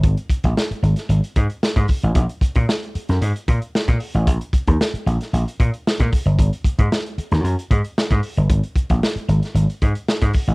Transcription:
<<
  \new Staff \with { instrumentName = "Slap bass" } { \clef bass \time 4/4 \key aes \major \tempo 4 = 114 aes,,16 r8 bes,,16 r8 aes,,16 r16 aes,,16 r16 aes,16 r8 aes,16 r16 a,,16 | bes,,16 r8 bes,16 r8. ges,16 aes,16 r16 bes,16 r8 bes,16 r16 a,,16 | bes,,16 r8 ees,16 r8 bes,,16 r16 bes,,16 r16 bes,16 r8 bes,16 r16 g,,16 | aes,,16 r8 aes,16 r8. ees,16 ges,16 r16 aes,16 r8 aes,16 r16 g,,16 |
aes,,16 r8 bes,,16 r8 aes,,16 r16 aes,,16 r16 aes,16 r8 aes,16 r16 a,,16 | }
  \new DrumStaff \with { instrumentName = "Drums" } \drummode { \time 4/4 <hh bd>16 hh16 <hh bd>16 <hh bd>16 sn16 hh16 hh16 <hh sn>16 hh16 hh16 <hh bd>16 hh16 sn16 <hh bd>16 <hho bd>16 hh16 | <hh bd>16 hh16 <hh bd>16 <hh bd>16 sn16 hh16 hh16 <hh sn>16 hh16 hh16 <hh bd>16 hh16 sn16 <hh bd>16 hho16 hh16 | <hh bd>16 hh16 <hh bd>16 <hh bd>16 sn16 hh16 hh16 <hh sn>16 hh16 hh16 <hh bd>16 hh16 sn16 <hh bd>16 <hho bd>16 hh16 | <hh bd>16 hh16 <hh bd>16 <hh bd>16 sn16 hh16 hh16 <hh sn>16 hh16 hh16 <hh bd>16 hh16 sn16 <hh bd>16 hho16 hh16 |
<hh bd>16 hh16 <hh bd>16 <hh bd>16 sn16 hh16 hh16 <hh sn>16 hh16 hh16 <hh bd>16 hh16 sn16 <hh bd>16 <hho bd>16 hh16 | }
>>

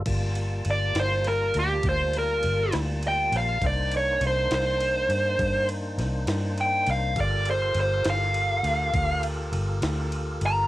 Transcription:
<<
  \new Staff \with { instrumentName = "Lead electric guitar" } { \time 12/8 \key g \minor \tempo 4. = 68 r4 d''8 c''8 bes'8 g'8 c''8 bes'4 r8 g''8 f''8 | d''8 cis''8 c''8 c''2 r4. g''8 f''8 | d''8 c''8 c''8 f''2 r2 bes''8 | }
  \new Staff \with { instrumentName = "Tonewheel organ" } { \time 12/8 \key g \minor <g bes f' a''>1. | <bes d' ees' c''>1. | <f' g' a' bes'>1. | }
  \new Staff \with { instrumentName = "Fingered electric bass" } { \clef bass \time 12/8 \key g \minor g,,4 g,,8 g,,4 d,8 d,4 g,,8 d,4 bes,,8 | c,4 c,8 c,4 g,8 g,4 c,8 g,4 c,8 | g,,4 g,,8 g,,4 d,8 d,4 g,,8 d,4 g,,8 | }
  \new DrumStaff \with { instrumentName = "Drums" } \drummode { \time 12/8 <cymc bd cymr>8 cymr8 cymr8 <cymr sn>8 cymr8 cymr8 <bd cymr>8 cymr8 cymr8 <cymr sn>8 cymr8 cymr8 | <bd cymr>8 cymr8 cymr8 <cymr sn>8 cymr8 cymr8 <bd cymr>8 cymr8 <cymr sn>8 <cymr sn>8 cymr8 cymr8 | <bd cymr>8 cymr8 cymr8 <cymr sn>8 cymr8 cymr8 <bd cymr>8 cymr8 cymr8 <cymr sn>8 cymr8 cymr8 | }
>>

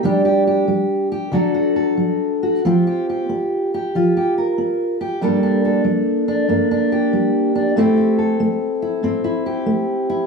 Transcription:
\new Staff \with { instrumentName = "Steel-string acoustic guitar" } { \time 6/8 \key g \minor \tempo 4. = 47 << { <g d' g'>16 g'16 g'8. g'16 <fis d' fis' a'>16 fis'16 a'8. fis'16 | <c' f' g'>16 g'16 g'8. g'16 f'16 g'16 bes'8. g'16 | <g bes d' a'>16 d'16 a'8. d'16 bes16 d'16 g'8. d'16 | <a c' e' g'>16 e'16 a'8. e'16 c'16 e'16 g'8. e'16 | } \\ { d8. g8. d8. fis8. | f8. c'8. f8. c'8. | g,8. g8. g,8. g8. | a,8. a8. a,8. a8. | } >> }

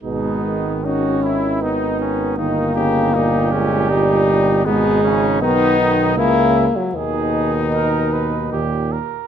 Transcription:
<<
  \new Staff \with { instrumentName = "Trumpet" } { \time 3/4 \key gis \minor \tempo 4 = 78 dis'4 fis'8 e'8 dis'4 | dis'4 g'2 | dis'4 dis'4 e'8 r8 | gis'4 ais'8 b'8 g'8 ais'8 | }
  \new Staff \with { instrumentName = "Cornet" } { \time 3/4 \key gis \minor b4 dis'8 e'8 dis'8 cis'8 | dis'8 g'8 dis'8 cis'8 dis'4 | b8 cis'8 dis'4 e'8 r8 | dis'2~ dis'8 r8 | }
  \new Staff \with { instrumentName = "French horn" } { \clef bass \time 3/4 \key gis \minor gis4 cis'4 b4 | ais4. gis8 g4 | gis4 b4 ais8. fis16 | dis2~ dis8 r8 | }
  \new Staff \with { instrumentName = "Trombone" } { \clef bass \time 3/4 \key gis \minor b,8 dis2~ dis8 | dis8 cis8 ais,2 | b,8 cis8 dis8 dis8 cis8 r8 | b,2 ais,8 r8 | }
  \new Staff \with { instrumentName = "Bass trombone" } { \clef bass \time 3/4 \key gis \minor gis,,2. | g,,2. | gis,,4 b,,4 cis,8 r8 | dis,2 dis,8 r8 | }
>>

